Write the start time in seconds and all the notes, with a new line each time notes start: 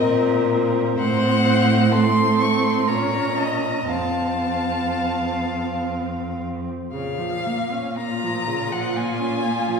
Already playing: C4 A#4 D#5
0.05 A#2
0.51 C4
0.98 A2 C4 C5 F#5
1.92 C4 A4 C6
2.40 C#6
2.64 C6
2.88 A#2 C#4 C#5 A#5
3.39 D#5
3.88 F2 C4 F5 A5
6.92 A#2 C#3 F5
7.18 F3
7.47 A#3
7.73 C#4
7.98 A#3 F4 A#5
8.24 F3
8.48 C#3
8.72 F3 F#5
8.97 A#3 G#5
9.20 C#4
9.45 A#3
9.69 F3